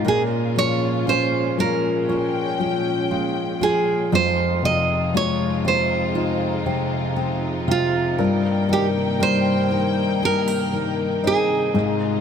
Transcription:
Already playing: steel-string acoustic guitar G#3 C4
0.04 string section A#2 G#3 C#4 F4, steel-string acoustic guitar A#2 F4, grand piano A#2
0.08 nylon-string guitar G#4
0.56 grand piano F3, steel-string acoustic guitar C#4, nylon-string guitar C#5
1.06 grand piano C#4, steel-string acoustic guitar F4, nylon-string guitar C5
1.58 grand piano F3, steel-string acoustic guitar C#4, nylon-string guitar A#4
2.07 grand piano C#4, steel-string acoustic guitar F4, string section G5
2.60 grand piano F3, steel-string acoustic guitar C#4
3.11 steel-string acoustic guitar G#3, grand piano F4
3.61 grand piano F3, steel-string acoustic guitar F4, nylon-string guitar G#4
4.11 steel-string acoustic guitar F2 F4, grand piano F2, string section C3 G#3 D#4 F4, nylon-string guitar C5
4.63 grand piano C3, nylon-string guitar D#5
5.14 grand piano G#3, steel-string acoustic guitar F4, nylon-string guitar C#5
5.65 grand piano C3, steel-string acoustic guitar C4, nylon-string guitar C5
6.15 grand piano D#4, steel-string acoustic guitar F4
6.66 grand piano C3, steel-string acoustic guitar C4
7.16 steel-string acoustic guitar G#3, grand piano C4
7.68 grand piano C3, steel-string acoustic guitar F4, nylon-string guitar F4
8.18 string section G2 A#3 G5, grand piano G2, steel-string acoustic guitar A#4
8.69 grand piano D#3, steel-string acoustic guitar D#4, nylon-string guitar G4
9.20 grand piano G3, steel-string acoustic guitar A#4, nylon-string guitar C5
9.70 grand piano D#3, steel-string acoustic guitar D#4
10.22 grand piano A#3, steel-string acoustic guitar G#4, nylon-string guitar A#4
10.48 steel-string acoustic guitar A#4
10.73 grand piano D#3, steel-string acoustic guitar D#4
11.23 steel-string acoustic guitar C4, grand piano D#4, nylon-string guitar G#4
11.73 grand piano G#2, steel-string acoustic guitar G#2, string section C3 G#3 F4

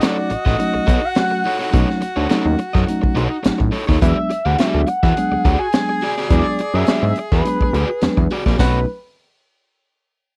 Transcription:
Already playing: baritone saxophone F#4
0.01 tine electric piano F#3 A3 C#4 D#4, overdriven electric guitar D#4 A4 C#5, analog synth lead D5, snare, closed hi-hat
0.30 analog synth bass A1, analog synth lead D#5, muted overdriven electric guitar stroke, closed hi-hat
0.45 analog synth bass A1, overdriven electric guitar D#4 A4 D#5, kick, snare
0.58 tine electric piano F#3 A3 C#4 D#4, muted overdriven electric guitar stroke, closed hi-hat
0.74 analog synth bass B1, muted overdriven electric guitar stroke
0.87 analog synth bass B1, overdriven electric guitar D#4 A4 C#5, kick, closed hi-hat
1.02 analog synth lead F#5, muted overdriven electric guitar stroke
1.15 tine electric piano F#3 A3 C#4 F#4, analog synth lead F#5, muted overdriven electric guitar stroke, snare, closed hi-hat
1.31 muted overdriven electric guitar stroke
1.44 overdriven electric guitar D#4 A4 C#5, open hi-hat
1.59 overdriven electric guitar D#4 A4 C#5, snare
1.72 analog synth bass B1, tine electric piano F#3 A3 C#4 D#4, overdriven electric guitar D#4 A4 C#5, kick, closed hi-hat
1.90 snare
2.01 muted overdriven electric guitar stroke, closed hi-hat
2.16 analog synth bass D2, overdriven electric guitar D#4 A4 C#5
2.29 tine electric piano F#3 A3 C#4 D#4, overdriven electric guitar D#4 A4 C#5, snare, closed hi-hat
2.46 analog synth bass D#2
2.59 muted overdriven electric guitar stroke, closed hi-hat
2.73 analog synth bass F#2, overdriven electric guitar D#4 A4 D#5, kick, snare
2.87 tine electric piano F#3 A3 C#4 D#4, muted overdriven electric guitar stroke, closed hi-hat
3.02 analog synth bass B1, muted overdriven electric guitar stroke, kick
3.15 analog synth bass B1, overdriven electric guitar D#4 A4 C#5, closed hi-hat
3.29 muted overdriven electric guitar stroke
3.43 analog synth bass A1, tine electric piano F#3 A3 C#4 D#4, muted overdriven electric guitar stroke, snare, closed hi-hat
3.58 analog synth bass A1, muted overdriven electric guitar stroke, kick
3.71 overdriven electric guitar D#4 A4 C#5, open hi-hat
3.87 analog synth bass D#2, overdriven electric guitar D#4 A4 C#5, kick, snare
4.01 analog synth bass E2, tine electric piano F#3 G#3 B3 D4, overdriven electric guitar F#4 G#4 D5, analog synth lead E5, kick, closed hi-hat
4.30 muted overdriven electric guitar stroke, closed hi-hat
4.44 analog synth bass D2, overdriven electric guitar F#4 G#4 D5, analog synth lead F#5
4.58 tine electric piano F#3 G#3 B3 D4, overdriven electric guitar F#4 G#4 D5, analog synth lead E5, snare, closed hi-hat
4.74 analog synth bass D2
4.86 analog synth lead F#5, muted overdriven electric guitar stroke, closed hi-hat
5.03 analog synth bass E2, overdriven electric guitar F#4 G#4 E5, kick, snare
5.16 tine electric piano F#3 G#3 B3 D4, baritone saxophone G#4, muted overdriven electric guitar stroke, closed hi-hat
5.31 analog synth bass D2, muted overdriven electric guitar stroke
5.45 analog synth bass D2, overdriven electric guitar F#4 G#4 D5, kick, closed hi-hat
5.59 analog synth lead G#5, muted overdriven electric guitar stroke
5.72 tine electric piano F#3 G#3 B3 D4, analog synth lead G#5, muted overdriven electric guitar stroke, snare, closed hi-hat
5.89 muted overdriven electric guitar stroke
6.01 overdriven electric guitar F#4 G#4 D5, open hi-hat
6.18 overdriven electric guitar F#4 G#4 D5, snare
6.29 analog synth bass E2, tine electric piano F#3 G#3 B3 D4, overdriven electric guitar F#4 G#4 D5, analog synth lead D5, kick, closed hi-hat
6.59 muted overdriven electric guitar stroke, closed hi-hat
6.74 analog synth bass F#2, overdriven electric guitar F#4 G#4 D5, analog synth lead E5
6.87 tine electric piano F#3 G#3 B3 D4, overdriven electric guitar F#4 G#4, snare, closed hi-hat
6.91 overdriven electric guitar D5
7.02 analog synth bass G#2, analog synth lead E5
7.16 muted overdriven electric guitar stroke, closed hi-hat
7.32 analog synth bass E2, overdriven electric guitar F#4 G#4 E5, analog synth lead B4, kick, snare
7.45 tine electric piano F#3 G#3 B3 D4, muted overdriven electric guitar stroke, closed hi-hat
7.61 analog synth bass D2, muted overdriven electric guitar stroke, kick
7.73 analog synth bass D2, overdriven electric guitar F#4 G#4 D5, closed hi-hat
7.90 muted overdriven electric guitar stroke
8.01 analog synth bass E2, tine electric piano F#3 G#3 B3 D4, muted overdriven electric guitar stroke, snare, closed hi-hat
8.17 analog synth bass E2, muted overdriven electric guitar stroke, kick
8.30 overdriven electric guitar F#4 G#4 D5, open hi-hat
8.46 analog synth bass A#1, overdriven electric guitar F#4 G#4 D5, kick, snare
8.59 analog synth bass B1, tine electric piano F#3 A3 C#4 D#4, overdriven electric guitar D#4 A4 C#5, baritone saxophone F#4, analog synth lead B4, kick, snare, crash

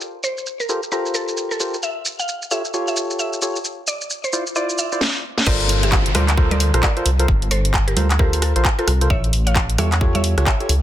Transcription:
0.01 shaker
0.24 synth pluck C5, shaker
0.38 shaker
0.47 shaker
0.60 synth pluck A#4, shaker
0.69 synth stab F4 G4 A4 A#4 C5, shaker
0.83 shaker
0.92 synth stab F4 G4 A4 A#4 C5, synth pluck A#4, shaker
1.06 shaker
1.15 synth pluck A4, shaker
1.28 shaker
1.37 shaker
1.51 synth pluck A4, shaker
1.60 synth stab F4 G4 A4 A#4 C5, shaker
1.74 shaker
1.83 synth pluck E5, shaker
2.06 shaker
2.19 synth pluck F5, shaker
2.28 shaker
2.42 shaker
2.51 synth stab F4 G4 A4 C#5, synth pluck E5, shaker
2.65 shaker
2.74 synth stab F4 G4 A4 C#5, shaker
2.88 synth pluck E5, shaker
2.97 shaker
3.10 shaker
3.19 synth pluck E5, shaker
3.33 shaker
3.42 synth stab F4 G4 A4 C#5, shaker
3.56 shaker
3.65 shaker
3.87 synth pluck D5, shaker
4.01 shaker
4.10 shaker
4.24 synth pluck C5, shaker
4.33 synth stab E4 F4 C5 D5, shaker
4.47 shaker
4.56 synth stab E4 F4 C5 D5, synth pluck D5, shaker
4.70 shaker
4.78 synth pluck E5, shaker
4.92 synth stab E4 F4 C5 D5, shaker
5.01 snare
5.38 snare
5.46 detuned saw bass G1, synth stab F4 A4 A#4 C5, synth pluck A#4 D5, kick, crash, downlifter
5.60 closed hi-hat
5.69 open hi-hat
5.83 synth pluck G4 E5, closed hi-hat
5.92 kick, clap
6.06 closed hi-hat
6.15 detuned saw bass D2, synth stab F4 A4 A#4 C5, synth pluck A#4 D5, cross-stick, open hi-hat, high conga
6.29 clap, closed hi-hat
6.38 synth stab F4 A4 A#4 C5, kick
6.51 synth pluck A#4 D5, closed hi-hat, high conga
6.60 open hi-hat
6.74 detuned saw bass A#1, synth stab F4 A4 A#4 C5, cross-stick, closed hi-hat
6.83 synth pluck A#4 D5, kick, clap
6.97 synth stab F4 A4 A#4 C5, closed hi-hat
7.06 detuned saw bass C2, open hi-hat
7.19 synth stab F4 A4 A#4 C5, closed hi-hat
7.28 detuned saw bass G1, kick
7.42 closed hi-hat
7.51 synth pluck A4 C5, open hi-hat
7.65 closed hi-hat
7.74 kick, clap
7.88 synth pluck G4 A#4, closed hi-hat
7.97 detuned saw bass D2, synth stab F4 A4 A#4 C5, open hi-hat, high conga
8.11 clap, closed hi-hat
8.19 synth stab F4 A4 A#4 C5, synth pluck G4 A#4, kick
8.33 open hi-hat
8.42 synth pluck F4 A4, cross-stick, open hi-hat
8.56 detuned saw bass A#1, synth stab F4 A4 A#4 C5, closed hi-hat
8.65 kick, clap
8.79 synth pluck F4 A4, synth stab F4 A4 A#4 C5, closed hi-hat
8.87 detuned saw bass C2, cross-stick, open hi-hat
9.01 synth stab F4 A4 A#4 C5, closed hi-hat
9.10 detuned saw bass A1, synth pluck C#5 E5, kick
9.24 closed hi-hat
9.33 open hi-hat
9.47 synth pluck C#5 F5, closed hi-hat
9.56 kick, clap
9.70 closed hi-hat
9.78 detuned saw bass E2, synth stab F4 G4 A4 C#5, synth pluck C#5 E5, cross-stick, open hi-hat, high conga
9.92 clap, closed hi-hat
10.01 synth stab F4 G4 A4 C#5, kick
10.15 synth pluck C#5 E5, closed hi-hat, high conga
10.24 open hi-hat
10.38 detuned saw bass C#2, synth stab F4 G4 A4 C#5, cross-stick, closed hi-hat
10.47 synth pluck C#5 E5, kick, clap
10.60 synth stab F4 G4 A4 C#5, closed hi-hat
10.69 detuned saw bass C#2, open hi-hat

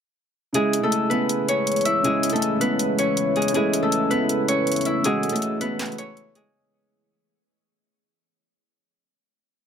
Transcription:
0.53 grand piano C#3 G#3 E4, ambient pad C#3 E3 G#3 E4, harp G#3 G#4, closed hi-hat
0.73 closed hi-hat
0.81 grand piano C#3 G#3 E4, harp A3 A4
0.92 closed hi-hat
1.09 grand piano C#3 G#3 E4, harp B3 B4, closed hi-hat
1.29 closed hi-hat
1.49 harp C#4 C#5, closed hi-hat
1.67 closed hi-hat
1.72 closed hi-hat
1.76 closed hi-hat
1.81 closed hi-hat
1.85 harp E4 E5, closed hi-hat
2.03 grand piano C#3 G#3 E4, harp G#3 G#4, closed hi-hat
2.23 closed hi-hat
2.30 grand piano C#3 G#3, harp A3 A4, closed hi-hat
2.34 grand piano C#4, closed hi-hat
2.42 closed hi-hat
2.59 grand piano C#3 G#3 E4, harp B3 B4, closed hi-hat
2.79 closed hi-hat
2.99 harp C#4 C#5, closed hi-hat
3.17 closed hi-hat
3.36 harp G#3 G#4, closed hi-hat
3.42 closed hi-hat
3.48 closed hi-hat
3.53 grand piano C#3 A3 E4, harp G#3 G#4, ambient pad A3, closed hi-hat
3.73 closed hi-hat
3.81 grand piano C#3 A3 E4, harp A3 A4
3.92 closed hi-hat
4.09 grand piano C#3 A3 E4, harp B3 B4, closed hi-hat
4.29 closed hi-hat
4.48 harp C#4 C#5, closed hi-hat
4.67 closed hi-hat
4.72 closed hi-hat
4.76 closed hi-hat
4.81 closed hi-hat
4.85 harp E4 E5, closed hi-hat
5.03 grand piano C#3 A3 F#4, harp G#3 G#4, closed hi-hat
5.23 closed hi-hat
5.29 grand piano C#3 A3, harp A3 A4, closed hi-hat
5.34 grand piano E4, closed hi-hat
5.42 closed hi-hat
5.59 grand piano C#3 A3 F#4, harp B3 B4, closed hi-hat
5.79 snare, clap, closed hi-hat
5.86 closed hi-hat
5.92 closed hi-hat
5.98 harp C#4 C#5, closed hi-hat
6.17 closed hi-hat
6.35 harp G#3 G#4, closed hi-hat

